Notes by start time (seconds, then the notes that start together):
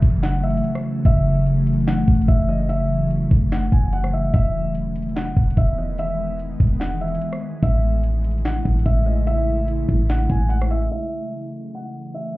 Already playing: C#3 E3 F#3 A3, downlifter
0.02 F#1, kick, closed hi-hat
0.09 closed hi-hat
0.16 closed hi-hat
0.23 F#5, snare, closed hi-hat
0.43 E5, closed hi-hat
0.50 closed hi-hat
0.57 closed hi-hat
0.64 closed hi-hat
0.75 cross-stick
1.05 F#1 E5, kick, closed hi-hat
1.46 closed hi-hat
1.67 closed hi-hat
1.74 closed hi-hat
1.80 closed hi-hat
1.87 F#5, snare, closed hi-hat
2.08 F#1, kick, closed hi-hat
2.15 closed hi-hat
2.22 closed hi-hat
2.28 F#1 E5, kick, closed hi-hat
2.49 D#5
2.69 E5, closed hi-hat
3.11 closed hi-hat
3.31 F#1, kick, closed hi-hat
3.52 F#5, snare, closed hi-hat
3.72 F#1 G#5, kick, closed hi-hat
3.93 F#5, closed hi-hat
4.04 cross-stick
4.13 E5
4.34 E1 D#3 G#3 B3 E5, kick, closed hi-hat
4.75 closed hi-hat
4.96 closed hi-hat
5.02 closed hi-hat
5.09 closed hi-hat
5.16 F#5, snare, closed hi-hat
5.37 E1, kick, closed hi-hat
5.43 closed hi-hat
5.50 closed hi-hat
5.57 E1 E5, kick, closed hi-hat
5.78 D#5
5.98 E5, closed hi-hat
6.39 closed hi-hat
6.60 E1, kick, closed hi-hat
6.67 closed hi-hat
6.74 closed hi-hat
6.80 F#5, snare, closed hi-hat
7.01 E5, closed hi-hat
7.08 closed hi-hat
7.15 closed hi-hat
7.21 closed hi-hat
7.33 cross-stick
7.62 A1 C#3 A3 E4 E5, kick, closed hi-hat
8.04 closed hi-hat
8.24 closed hi-hat
8.31 closed hi-hat
8.38 closed hi-hat
8.45 F#5, snare, closed hi-hat
8.65 A1, kick, closed hi-hat
8.72 closed hi-hat
8.79 closed hi-hat
8.86 A1 E5, kick, closed hi-hat
9.06 D#5
9.27 E5, closed hi-hat
9.68 closed hi-hat
9.89 A1, kick, closed hi-hat
10.09 F#5, snare, closed hi-hat
10.30 A1 G#5, kick, closed hi-hat
10.49 F#5, closed hi-hat
10.62 cross-stick
10.71 E5
10.92 C#3 E3 F#3 A3 E5
11.75 F#5
12.14 E5